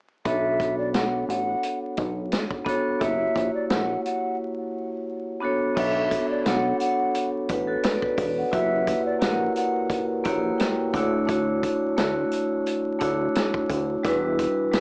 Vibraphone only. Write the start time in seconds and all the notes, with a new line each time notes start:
0.25 B3 D4 F#4 A4
0.29 C#5
2.65 B3 D4 F#4 A4
2.69 C#5
2.99 A#3 E4 F#4 G4
3.03 C#5
5.41 B3 D4 F#4 A4 C#5
5.75 B3 D4 F#4 A4
5.79 C#5
6.44 B3 D4 F#4 A4
6.48 C#5
7.51 B4
7.67 F#4 A4
7.84 B4 D5
8.03 B4
8.17 B4 D5
8.38 D5 F#5
8.51 A#3 E4 F#4 G4
8.55 B4
8.61 C#5
9.19 A#3 E4 F#4 G4
9.23 A#4
10.24 A#3 E4 F#4 G4
10.28 C#5
10.58 G5
10.93 A3 D4 E4 F#4 D5
10.98 C#5
11.26 A3 D4 E4 F#4
11.30 C#5
11.97 A3 D4 E4 F#4
12.01 C#5
12.99 A3 D4 E4 F#4
13.03 C#5
14.03 G3 D4 E4 F#4
14.07 B4
14.71 G3 D4 E4 F#4
14.75 B4